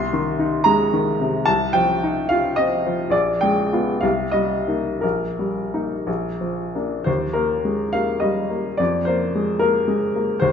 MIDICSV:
0, 0, Header, 1, 2, 480
1, 0, Start_track
1, 0, Key_signature, -3, "major"
1, 0, Tempo, 542005
1, 1302, Time_signature, 6, 3, 24, 8
1, 1782, Tempo, 567108
1, 3222, Tempo, 626959
1, 3702, Tempo, 683371
1, 5622, Tempo, 573614
1, 7062, Tempo, 542986
1, 8590, End_track
2, 0, Start_track
2, 0, Title_t, "Upright piano"
2, 0, Program_c, 0, 0
2, 0, Note_on_c, 0, 36, 50
2, 0, Note_on_c, 0, 84, 77
2, 15, Control_c, 0, 64, 127
2, 117, Note_on_c, 0, 51, 45
2, 348, Note_on_c, 0, 63, 41
2, 488, Note_off_c, 0, 51, 0
2, 567, Note_on_c, 0, 82, 74
2, 569, Note_off_c, 0, 84, 0
2, 583, Note_on_c, 0, 56, 47
2, 721, Note_off_c, 0, 63, 0
2, 827, Note_on_c, 0, 51, 43
2, 966, Note_off_c, 0, 56, 0
2, 1069, Note_on_c, 0, 48, 39
2, 1213, Note_off_c, 0, 51, 0
2, 1255, Note_off_c, 0, 36, 0
2, 1289, Note_on_c, 0, 81, 72
2, 1298, Note_off_c, 0, 82, 0
2, 1307, Note_off_c, 0, 48, 0
2, 1308, Note_on_c, 0, 36, 47
2, 1317, Control_c, 0, 64, 0
2, 1449, Control_c, 0, 64, 127
2, 1532, Note_on_c, 0, 79, 72
2, 1533, Note_off_c, 0, 81, 0
2, 1547, Note_on_c, 0, 53, 39
2, 1801, Note_on_c, 0, 63, 40
2, 1929, Note_off_c, 0, 53, 0
2, 2016, Note_on_c, 0, 77, 67
2, 2017, Note_off_c, 0, 79, 0
2, 2037, Note_on_c, 0, 65, 45
2, 2172, Note_off_c, 0, 63, 0
2, 2247, Note_on_c, 0, 75, 69
2, 2254, Note_off_c, 0, 77, 0
2, 2267, Note_on_c, 0, 60, 43
2, 2405, Note_off_c, 0, 65, 0
2, 2504, Note_on_c, 0, 53, 38
2, 2636, Note_off_c, 0, 60, 0
2, 2695, Note_off_c, 0, 36, 0
2, 2706, Note_on_c, 0, 34, 46
2, 2716, Note_on_c, 0, 74, 67
2, 2721, Note_off_c, 0, 75, 0
2, 2732, Note_off_c, 0, 53, 0
2, 2740, Control_c, 0, 64, 0
2, 2881, Control_c, 0, 64, 127
2, 2963, Note_on_c, 0, 79, 66
2, 2964, Note_off_c, 0, 74, 0
2, 2981, Note_on_c, 0, 56, 37
2, 3234, Note_on_c, 0, 59, 32
2, 3238, Note_on_c, 0, 65, 35
2, 3369, Note_off_c, 0, 56, 0
2, 3429, Note_off_c, 0, 34, 0
2, 3441, Note_off_c, 0, 59, 0
2, 3443, Note_off_c, 0, 65, 0
2, 3446, Note_on_c, 0, 77, 54
2, 3456, Note_off_c, 0, 79, 0
2, 3462, Note_on_c, 0, 36, 47
2, 3473, Control_c, 0, 64, 0
2, 3633, Control_c, 0, 64, 127
2, 3683, Note_on_c, 0, 75, 56
2, 3696, Note_off_c, 0, 77, 0
2, 3699, Note_on_c, 0, 55, 34
2, 3940, Note_on_c, 0, 58, 26
2, 3941, Note_on_c, 0, 63, 30
2, 4081, Note_off_c, 0, 55, 0
2, 4160, Note_off_c, 0, 58, 0
2, 4161, Note_off_c, 0, 63, 0
2, 4163, Note_off_c, 0, 36, 0
2, 4174, Note_off_c, 0, 75, 0
2, 4174, Note_on_c, 0, 70, 44
2, 4187, Note_on_c, 0, 34, 38
2, 4201, Control_c, 0, 64, 0
2, 4321, Control_c, 0, 64, 127
2, 4440, Note_on_c, 0, 55, 31
2, 4684, Note_on_c, 0, 58, 25
2, 4685, Note_on_c, 0, 63, 30
2, 4825, Note_off_c, 0, 55, 0
2, 4895, Note_off_c, 0, 58, 0
2, 4896, Note_off_c, 0, 34, 0
2, 4896, Note_off_c, 0, 63, 0
2, 4916, Note_on_c, 0, 34, 37
2, 4934, Control_c, 0, 64, 0
2, 5058, Control_c, 0, 64, 127
2, 5155, Note_on_c, 0, 53, 28
2, 5393, Note_off_c, 0, 70, 0
2, 5394, Note_on_c, 0, 58, 23
2, 5396, Note_on_c, 0, 62, 26
2, 5536, Note_off_c, 0, 53, 0
2, 5598, Note_off_c, 0, 58, 0
2, 5599, Note_off_c, 0, 62, 0
2, 5601, Note_off_c, 0, 34, 0
2, 5601, Note_on_c, 0, 72, 56
2, 5616, Note_on_c, 0, 39, 38
2, 5636, Control_c, 0, 64, 0
2, 5763, Control_c, 0, 64, 127
2, 5839, Note_on_c, 0, 70, 47
2, 5856, Note_off_c, 0, 72, 0
2, 5856, Note_on_c, 0, 58, 35
2, 6102, Note_on_c, 0, 56, 28
2, 6251, Note_off_c, 0, 58, 0
2, 6335, Note_on_c, 0, 77, 66
2, 6337, Note_off_c, 0, 70, 0
2, 6347, Note_off_c, 0, 56, 0
2, 6348, Note_on_c, 0, 58, 36
2, 6563, Note_on_c, 0, 75, 47
2, 6580, Note_off_c, 0, 77, 0
2, 6582, Note_on_c, 0, 55, 32
2, 6728, Note_off_c, 0, 58, 0
2, 6817, Note_on_c, 0, 58, 30
2, 6964, Note_off_c, 0, 55, 0
2, 7025, Note_off_c, 0, 39, 0
2, 7045, Note_on_c, 0, 74, 55
2, 7049, Note_off_c, 0, 75, 0
2, 7058, Note_off_c, 0, 58, 0
2, 7063, Note_on_c, 0, 41, 46
2, 7078, Control_c, 0, 64, 0
2, 7233, Control_c, 0, 64, 127
2, 7288, Note_on_c, 0, 72, 55
2, 7301, Note_off_c, 0, 74, 0
2, 7307, Note_on_c, 0, 58, 39
2, 7555, Note_on_c, 0, 56, 29
2, 7689, Note_off_c, 0, 58, 0
2, 7769, Note_on_c, 0, 70, 62
2, 7773, Note_off_c, 0, 72, 0
2, 7787, Note_off_c, 0, 56, 0
2, 7787, Note_on_c, 0, 58, 37
2, 8019, Note_on_c, 0, 56, 34
2, 8165, Note_off_c, 0, 58, 0
2, 8262, Note_on_c, 0, 58, 34
2, 8406, Note_off_c, 0, 56, 0
2, 8468, Note_off_c, 0, 41, 0
2, 8477, Note_on_c, 0, 72, 67
2, 8495, Note_off_c, 0, 70, 0
2, 8497, Note_on_c, 0, 39, 45
2, 8503, Note_off_c, 0, 58, 0
2, 8517, Control_c, 0, 64, 0
2, 8590, Note_off_c, 0, 39, 0
2, 8590, Note_off_c, 0, 72, 0
2, 8590, End_track
0, 0, End_of_file